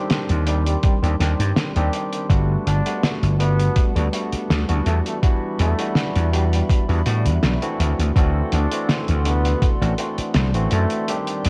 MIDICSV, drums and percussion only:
0, 0, Header, 1, 2, 480
1, 0, Start_track
1, 0, Tempo, 731707
1, 1511, Time_signature, 4, 2, 24, 8
1, 7541, End_track
2, 0, Start_track
2, 0, Title_t, "Drums"
2, 66, Note_on_c, 9, 42, 82
2, 71, Note_on_c, 9, 38, 127
2, 132, Note_off_c, 9, 42, 0
2, 136, Note_off_c, 9, 38, 0
2, 193, Note_on_c, 9, 42, 54
2, 259, Note_off_c, 9, 42, 0
2, 308, Note_on_c, 9, 42, 92
2, 373, Note_off_c, 9, 42, 0
2, 437, Note_on_c, 9, 42, 67
2, 503, Note_off_c, 9, 42, 0
2, 546, Note_on_c, 9, 42, 81
2, 549, Note_on_c, 9, 36, 123
2, 611, Note_off_c, 9, 42, 0
2, 615, Note_off_c, 9, 36, 0
2, 681, Note_on_c, 9, 42, 49
2, 747, Note_off_c, 9, 42, 0
2, 790, Note_on_c, 9, 38, 38
2, 791, Note_on_c, 9, 42, 91
2, 855, Note_off_c, 9, 38, 0
2, 857, Note_off_c, 9, 42, 0
2, 919, Note_on_c, 9, 42, 69
2, 985, Note_off_c, 9, 42, 0
2, 1027, Note_on_c, 9, 38, 113
2, 1028, Note_on_c, 9, 42, 81
2, 1093, Note_off_c, 9, 38, 0
2, 1094, Note_off_c, 9, 42, 0
2, 1155, Note_on_c, 9, 42, 54
2, 1220, Note_off_c, 9, 42, 0
2, 1268, Note_on_c, 9, 42, 82
2, 1334, Note_off_c, 9, 42, 0
2, 1395, Note_on_c, 9, 42, 60
2, 1461, Note_off_c, 9, 42, 0
2, 1507, Note_on_c, 9, 36, 116
2, 1510, Note_on_c, 9, 42, 83
2, 1573, Note_off_c, 9, 36, 0
2, 1576, Note_off_c, 9, 42, 0
2, 1752, Note_on_c, 9, 42, 83
2, 1818, Note_off_c, 9, 42, 0
2, 1877, Note_on_c, 9, 42, 72
2, 1942, Note_off_c, 9, 42, 0
2, 1991, Note_on_c, 9, 38, 121
2, 1991, Note_on_c, 9, 42, 86
2, 2056, Note_off_c, 9, 38, 0
2, 2057, Note_off_c, 9, 42, 0
2, 2120, Note_on_c, 9, 42, 55
2, 2185, Note_off_c, 9, 42, 0
2, 2231, Note_on_c, 9, 42, 82
2, 2297, Note_off_c, 9, 42, 0
2, 2358, Note_on_c, 9, 42, 64
2, 2424, Note_off_c, 9, 42, 0
2, 2465, Note_on_c, 9, 42, 80
2, 2467, Note_on_c, 9, 36, 117
2, 2531, Note_off_c, 9, 42, 0
2, 2533, Note_off_c, 9, 36, 0
2, 2598, Note_on_c, 9, 42, 51
2, 2664, Note_off_c, 9, 42, 0
2, 2709, Note_on_c, 9, 42, 82
2, 2775, Note_off_c, 9, 42, 0
2, 2836, Note_on_c, 9, 42, 59
2, 2902, Note_off_c, 9, 42, 0
2, 2953, Note_on_c, 9, 38, 126
2, 2955, Note_on_c, 9, 42, 78
2, 3019, Note_off_c, 9, 38, 0
2, 3020, Note_off_c, 9, 42, 0
2, 3074, Note_on_c, 9, 42, 55
2, 3140, Note_off_c, 9, 42, 0
2, 3187, Note_on_c, 9, 42, 78
2, 3253, Note_off_c, 9, 42, 0
2, 3318, Note_on_c, 9, 42, 65
2, 3383, Note_off_c, 9, 42, 0
2, 3429, Note_on_c, 9, 36, 114
2, 3429, Note_on_c, 9, 42, 85
2, 3495, Note_off_c, 9, 36, 0
2, 3495, Note_off_c, 9, 42, 0
2, 3668, Note_on_c, 9, 42, 81
2, 3734, Note_off_c, 9, 42, 0
2, 3796, Note_on_c, 9, 42, 70
2, 3861, Note_off_c, 9, 42, 0
2, 3905, Note_on_c, 9, 38, 117
2, 3913, Note_on_c, 9, 42, 79
2, 3971, Note_off_c, 9, 38, 0
2, 3978, Note_off_c, 9, 42, 0
2, 4038, Note_on_c, 9, 42, 49
2, 4103, Note_off_c, 9, 42, 0
2, 4155, Note_on_c, 9, 42, 85
2, 4220, Note_off_c, 9, 42, 0
2, 4283, Note_on_c, 9, 42, 70
2, 4349, Note_off_c, 9, 42, 0
2, 4391, Note_on_c, 9, 36, 115
2, 4396, Note_on_c, 9, 42, 80
2, 4456, Note_off_c, 9, 36, 0
2, 4461, Note_off_c, 9, 42, 0
2, 4520, Note_on_c, 9, 42, 48
2, 4585, Note_off_c, 9, 42, 0
2, 4629, Note_on_c, 9, 42, 81
2, 4695, Note_off_c, 9, 42, 0
2, 4759, Note_on_c, 9, 42, 70
2, 4825, Note_off_c, 9, 42, 0
2, 4872, Note_on_c, 9, 38, 123
2, 4874, Note_on_c, 9, 42, 80
2, 4938, Note_off_c, 9, 38, 0
2, 4940, Note_off_c, 9, 42, 0
2, 5000, Note_on_c, 9, 42, 58
2, 5065, Note_off_c, 9, 42, 0
2, 5117, Note_on_c, 9, 42, 90
2, 5182, Note_off_c, 9, 42, 0
2, 5245, Note_on_c, 9, 42, 60
2, 5310, Note_off_c, 9, 42, 0
2, 5352, Note_on_c, 9, 36, 109
2, 5355, Note_on_c, 9, 42, 85
2, 5417, Note_off_c, 9, 36, 0
2, 5420, Note_off_c, 9, 42, 0
2, 5590, Note_on_c, 9, 42, 78
2, 5656, Note_off_c, 9, 42, 0
2, 5718, Note_on_c, 9, 42, 68
2, 5783, Note_off_c, 9, 42, 0
2, 5832, Note_on_c, 9, 38, 121
2, 5834, Note_on_c, 9, 42, 86
2, 5898, Note_off_c, 9, 38, 0
2, 5900, Note_off_c, 9, 42, 0
2, 5958, Note_on_c, 9, 42, 52
2, 6023, Note_off_c, 9, 42, 0
2, 6071, Note_on_c, 9, 42, 92
2, 6136, Note_off_c, 9, 42, 0
2, 6200, Note_on_c, 9, 42, 70
2, 6265, Note_off_c, 9, 42, 0
2, 6312, Note_on_c, 9, 36, 112
2, 6312, Note_on_c, 9, 42, 84
2, 6377, Note_off_c, 9, 36, 0
2, 6378, Note_off_c, 9, 42, 0
2, 6444, Note_on_c, 9, 42, 55
2, 6510, Note_off_c, 9, 42, 0
2, 6550, Note_on_c, 9, 42, 94
2, 6615, Note_off_c, 9, 42, 0
2, 6680, Note_on_c, 9, 42, 62
2, 6746, Note_off_c, 9, 42, 0
2, 6786, Note_on_c, 9, 42, 92
2, 6788, Note_on_c, 9, 38, 121
2, 6851, Note_off_c, 9, 42, 0
2, 6853, Note_off_c, 9, 38, 0
2, 6917, Note_on_c, 9, 42, 55
2, 6982, Note_off_c, 9, 42, 0
2, 7025, Note_on_c, 9, 42, 87
2, 7091, Note_off_c, 9, 42, 0
2, 7151, Note_on_c, 9, 42, 60
2, 7217, Note_off_c, 9, 42, 0
2, 7270, Note_on_c, 9, 42, 92
2, 7336, Note_off_c, 9, 42, 0
2, 7395, Note_on_c, 9, 42, 56
2, 7460, Note_off_c, 9, 42, 0
2, 7509, Note_on_c, 9, 42, 90
2, 7541, Note_off_c, 9, 42, 0
2, 7541, End_track
0, 0, End_of_file